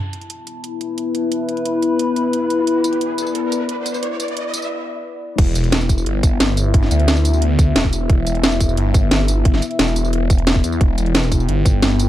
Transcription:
Already playing: analog synth pad B3 E4 E5, ambient pad E4 A5, riser
0.13 closed hi-hat
0.21 closed hi-hat
0.30 closed hi-hat
0.47 closed hi-hat
0.57 ambient pad B4
0.64 closed hi-hat
0.81 closed hi-hat
0.98 closed hi-hat
1.15 closed hi-hat
1.28 ambient pad B5, closed hi-hat
1.49 closed hi-hat
1.57 closed hi-hat
1.66 closed hi-hat
1.82 closed hi-hat
1.99 closed hi-hat
2.16 closed hi-hat
2.33 closed hi-hat
2.50 closed hi-hat
2.67 analog synth pad D5, closed hi-hat
2.84 closed hi-hat, tambourine
2.93 closed hi-hat
3.01 closed hi-hat
3.18 closed hi-hat, tambourine
3.27 tambourine
3.35 closed hi-hat
3.52 closed hi-hat, tambourine
3.69 closed hi-hat
3.86 closed hi-hat, tambourine
3.94 tambourine
4.03 closed hi-hat
4.20 closed hi-hat, tambourine
4.28 closed hi-hat
4.37 closed hi-hat
4.54 closed hi-hat, tambourine
4.62 tambourine
5.38 detuned saw bass E1, analog synth pad B3 E4 E5, kick, closed hi-hat, crash
5.55 detuned saw bass E1, closed hi-hat, tambourine
5.64 closed hi-hat
5.72 snare, closed hi-hat
5.81 tambourine
5.89 kick, closed hi-hat, tambourine
5.98 tambourine
6.06 detuned saw bass G1, closed hi-hat
6.23 kick, closed hi-hat, tambourine
6.40 detuned saw bass G1, snare, closed hi-hat
6.57 closed hi-hat, tambourine
6.74 kick, closed hi-hat
6.83 snare
6.91 detuned saw bass D2, closed hi-hat, tambourine
7.00 closed hi-hat
7.08 snare, closed hi-hat
7.17 tambourine
7.25 closed hi-hat, tambourine
7.33 tambourine
7.42 closed hi-hat
7.59 kick, closed hi-hat, tambourine
7.76 detuned saw bass E1, snare, closed hi-hat
7.84 kick
7.93 closed hi-hat, tambourine
8.10 detuned saw bass E1, kick, closed hi-hat
8.27 detuned saw bass E1, closed hi-hat, tambourine
8.35 closed hi-hat
8.44 snare, closed hi-hat
8.52 tambourine
8.60 kick, closed hi-hat, tambourine
8.69 tambourine
8.77 detuned saw bass G1, closed hi-hat
8.94 kick, closed hi-hat, tambourine
9.11 detuned saw bass G1, snare, closed hi-hat
9.28 closed hi-hat, tambourine
9.45 kick, closed hi-hat
9.54 snare
9.62 closed hi-hat, tambourine
9.71 closed hi-hat
9.79 detuned saw bass E1, snare, closed hi-hat
9.88 tambourine
9.96 closed hi-hat, tambourine
10.05 tambourine
10.13 closed hi-hat
10.30 kick, closed hi-hat, tambourine
10.38 closed hi-hat
10.47 snare, closed hi-hat
10.55 kick
10.64 detuned saw bass E2, closed hi-hat, tambourine
10.72 tambourine
10.81 detuned saw bass E1, analog synth pad G5, kick, closed hi-hat
10.98 detuned saw bass E1, closed hi-hat, tambourine
11.06 closed hi-hat
11.15 snare, closed hi-hat
11.23 tambourine
11.32 kick, closed hi-hat, tambourine
11.40 tambourine
11.49 detuned saw bass G1, closed hi-hat
11.66 kick, closed hi-hat, tambourine
11.82 detuned saw bass G1, snare, closed hi-hat
11.99 closed hi-hat, tambourine

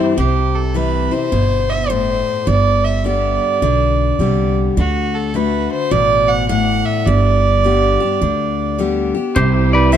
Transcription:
Already playing: steel-string acoustic guitar G2 E3 G3 C4 E4, tonewheel organ E4 G4 C5
0.18 upright bass C2, steel-string acoustic guitar C3, fiddle G4
0.55 fiddle A4
0.74 steel-string acoustic guitar E3 G3 C4 E4, fiddle B4
1.11 steel-string acoustic guitar C4 E4, fiddle C5
1.32 upright bass G1, steel-string acoustic guitar B2
1.70 fiddle E5
1.90 steel-string acoustic guitar A2, fiddle C5
2.47 upright bass G1, steel-string acoustic guitar G2, fiddle D5
2.84 fiddle E5
3.04 steel-string acoustic guitar D3 G3 B3 G4, fiddle D5
3.62 upright bass B1, steel-string acoustic guitar D3
4.19 upright bass C2, steel-string acoustic guitar D3 G3 B3 G4
4.77 upright bass D2, steel-string acoustic guitar D3, fiddle F#4
5.15 fiddle A4
5.34 steel-string acoustic guitar D3 A3 D4 F#4, fiddle B4
5.72 fiddle C5
5.91 upright bass A1, steel-string acoustic guitar B2, fiddle D5
6.28 fiddle F#5
6.49 steel-string acoustic guitar A2, fiddle F#5
6.86 fiddle E5
7.06 upright bass G1, steel-string acoustic guitar G2, fiddle D5
7.64 steel-string acoustic guitar D3 G3 B3 G4
8.00 steel-string acoustic guitar B3 G4
8.21 upright bass D2, steel-string acoustic guitar D3
8.78 steel-string acoustic guitar D3 G3 B3 G4
9.15 steel-string acoustic guitar B3 G4
9.35 upright bass C2, steel-string acoustic guitar C3, tonewheel organ E4 G4 C5, violin section E4 G4, clean electric guitar G4 C5
9.73 clean electric guitar B4 D5
9.92 steel-string acoustic guitar E3 G3 C4, clean electric guitar E5

